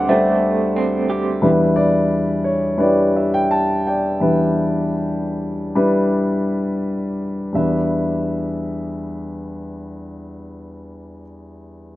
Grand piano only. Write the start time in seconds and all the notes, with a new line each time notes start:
Already playing: D2 D3 G3 D4 G4 A4 B4 C5 D5 E5 F#5
0.09 G3 D4 G4 A4 C5 E5
1.42 E2 E3 G3 D4 E4 B4
1.76 D5
2.44 C#5
2.78 G3 D4 E4 B4 D5
2.83 G4
3.16 E5
3.34 G5
3.51 A5
3.87 D5 G5
4.20 E2 E3 G3 D4 E4 B4
5.75 G3 D4 E4 B4
7.53 E2 G3 D4 E4 B4 E5